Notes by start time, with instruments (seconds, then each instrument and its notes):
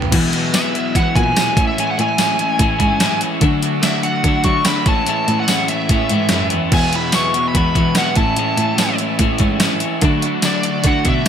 Already playing: clean electric guitar G2 D3, overdriven electric guitar G3 B3 D4 G4
0.02 floor tom
0.12 clean electric guitar E2 B2 F#3 G#3 B3 E4, cello E3, overdriven electric guitar E3, tonewheel organ E4 B4 F#5 G#5, kick, closed hi-hat, crash
0.31 clean electric guitar F#3 G#3 B3 E4, closed hi-hat
0.36 overdriven electric guitar E3
0.52 clean electric guitar E2 B2 F#3 G#3 B3 E4, overdriven electric guitar E3, lead electric guitar E5, snare, closed hi-hat, tambourine
0.75 overdriven electric guitar E3, clean electric guitar F#3 G#3 B3 E4, closed hi-hat
0.94 overdriven electric guitar E2 B2 E3, cello E3, clean electric guitar F#3 G#3 B3 E4, lead electric guitar F#5, kick, closed hi-hat
1.15 clean electric guitar E2 B2 F#3 G#3 B3 E4, cello A#2, overdriven electric guitar E3, lead electric guitar G#5, kick, closed hi-hat
1.35 overdriven electric guitar E3, clean electric guitar F#3 G#3 B3, snare, closed hi-hat, tambourine
1.39 clean electric guitar E4
1.56 cello A2, clean electric guitar A2 E3 G#3 C#4 E4, tonewheel organ C#5 E5, kick, closed hi-hat
1.67 lead electric guitar E5
1.77 clean electric guitar A2 E3 G#3 C#4 E4, lead electric guitar G#5, closed hi-hat
1.91 lead electric guitar F#5
1.98 cello A2, clean electric guitar G#3 C#4 E4, lead electric guitar G#5, closed hi-hat
2.18 clean electric guitar A2 E3 G#3 C#4 E4, snare, closed hi-hat, tambourine
2.38 clean electric guitar G#3 C#4 E4, closed hi-hat
2.59 cello A2, overdriven electric guitar A2, clean electric guitar E3 G#3 C#4 E4, kick, closed hi-hat
2.79 cello G#2, clean electric guitar A2 E3 G#3 C#4 E4, kick, closed hi-hat
2.99 clean electric guitar E3 G#3 C#4 E4, snare, closed hi-hat, tambourine
3.21 clean electric guitar G#3 C#4 E4, closed hi-hat
3.41 clean electric guitar D3 F#3 A3 D4 E4, cello D3, tonewheel organ D5 F#5, kick, closed hi-hat
3.45 overdriven electric guitar F#4
3.62 clean electric guitar A3 D4 E4, overdriven electric guitar F#4, closed hi-hat
3.83 clean electric guitar D3 F#3 A3 D4 E4, overdriven electric guitar F#4, lead electric guitar E5, snare, closed hi-hat, tambourine
4.03 clean electric guitar A3 D4 E4, overdriven electric guitar F#4, lead electric guitar F#5, closed hi-hat
4.24 overdriven electric guitar D3 F#4, cello D3, clean electric guitar F#3 A3 D4, kick, closed hi-hat
4.28 clean electric guitar E4
4.44 cello F#3, clean electric guitar F#3 A3 D4 E4, overdriven electric guitar F#4, lead electric guitar C#6, kick, closed hi-hat
4.48 clean electric guitar D3
4.64 overdriven electric guitar D3, clean electric guitar F#3 A3 D4 E4, lead electric guitar B5, snare, closed hi-hat, tambourine
4.68 overdriven electric guitar F#4
4.86 cello A2, clean electric guitar A2 E3 G#3 C#4 E4, tonewheel organ C#5 E5 A5, lead electric guitar A5, kick, closed hi-hat
5.06 clean electric guitar A2 E3 G#3 C#4 E4, lead electric guitar A5, closed hi-hat
5.28 cello A2, clean electric guitar G#3 C#4 E4, closed hi-hat
5.40 lead electric guitar F#5
5.47 clean electric guitar A2 E3 G#3 C#4 E4, snare, closed hi-hat, tambourine
5.68 clean electric guitar G#3 C#4 E4, lead electric guitar E5, closed hi-hat
5.89 cello A2, overdriven electric guitar A2, clean electric guitar E3 G#3 C#4 E4, kick, closed hi-hat
6.09 cello G#2, clean electric guitar A2 E3 G#3 C#4 E4, closed hi-hat
6.29 cello F#2, clean electric guitar E3 G#3 C#4, snare, closed hi-hat, tambourine
6.33 clean electric guitar E4
6.50 cello E2, clean electric guitar G#3 C#4 E4, closed hi-hat
6.71 clean electric guitar E2 B2 E3 G#3 B3 F#4, cello E2, tonewheel organ E4 B4 F#5, lead electric guitar G#5, kick, crash
6.76 overdriven electric guitar E4
6.92 clean electric guitar E3 G#3 B3 F#4, overdriven electric guitar E4, lead electric guitar B5, closed hi-hat
7.11 clean electric guitar E2 B2 E3 G#3 B3 F#4, lead electric guitar C#6, snare, closed hi-hat, tambourine
7.17 overdriven electric guitar E4
7.33 clean electric guitar E3 G#3 B3 F#4, overdriven electric guitar E4, closed hi-hat
7.48 lead electric guitar B5
7.54 cello E2, overdriven electric guitar E2 B2 E4, clean electric guitar E3 G#3 B3 F#4, lead electric guitar B5, kick, closed hi-hat
7.74 clean electric guitar E2 B2 E3 G#3 B3 F#4, cello E3, overdriven electric guitar E4, kick, closed hi-hat
7.95 clean electric guitar E3 G#3 B3 F#4, overdriven electric guitar E4, lead electric guitar F#5, snare, closed hi-hat, tambourine
8.15 cello A2, clean electric guitar E3 G#3 C#4 E4, tonewheel organ C#5 E5 A5, lead electric guitar A5, kick, closed hi-hat
8.20 clean electric guitar A2
8.36 clean electric guitar A2 E3 G#3 C#4 E4, closed hi-hat
8.57 cello A2, clean electric guitar G#3 C#4 E4, closed hi-hat
8.77 clean electric guitar A2 E3 G#3 C#4 E4, snare, closed hi-hat, tambourine
8.98 clean electric guitar G#3 C#4 E4, closed hi-hat
9.17 overdriven electric guitar A2, cello A2, clean electric guitar E3 G#3, kick, closed hi-hat
9.22 clean electric guitar C#4 E4
9.38 cello G#2, clean electric guitar E3 G#3 C#4 E4, kick, closed hi-hat
9.43 clean electric guitar A2
9.60 clean electric guitar E3 G#3 C#4 E4, snare, closed hi-hat, tambourine
9.80 clean electric guitar G#3 C#4 E4, closed hi-hat
10.01 clean electric guitar D3 F#3 A3 D4 E4, cello D3, overdriven electric guitar F#4, tonewheel organ D5 F#5, kick, closed hi-hat
10.22 clean electric guitar A3 D4 E4, overdriven electric guitar F#4, closed hi-hat
10.42 clean electric guitar D3 F#3 A3 D4, overdriven electric guitar F#4, lead electric guitar D5, snare, closed hi-hat, tambourine
10.47 clean electric guitar E4
10.63 clean electric guitar A3 D4 E4, overdriven electric guitar F#4, closed hi-hat
10.83 overdriven electric guitar D3 F#4, cello D3, clean electric guitar F#3 A3 D4 E4, lead electric guitar F#5, kick, closed hi-hat
11.05 cello B2, clean electric guitar F#3 A3 D4 E4, overdriven electric guitar F#4, kick, closed hi-hat
11.09 clean electric guitar D3, lead electric guitar E5
11.25 overdriven electric guitar D3